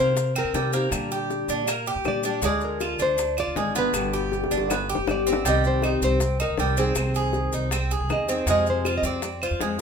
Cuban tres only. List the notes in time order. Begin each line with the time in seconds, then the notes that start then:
Already playing: A#3
0.36 C4
0.54 G3
0.74 A#3
1.12 G4
1.50 D4
1.68 A#3
1.87 G4
2.25 D4
2.44 G#3
2.81 F4
3.00 D4
3.38 F4
3.57 G#3
3.76 B3
4.13 G4
4.51 D4
4.70 B3
4.89 G4
5.27 C4
5.46 G3
5.84 D#4
6.03 C4
6.40 D#4
6.60 G3
6.78 C4
7.16 G#4
7.54 D#4
7.73 C4
7.91 G#4
8.29 C4
8.48 G#3
8.86 F4
9.05 C4
9.43 F4
9.61 G#3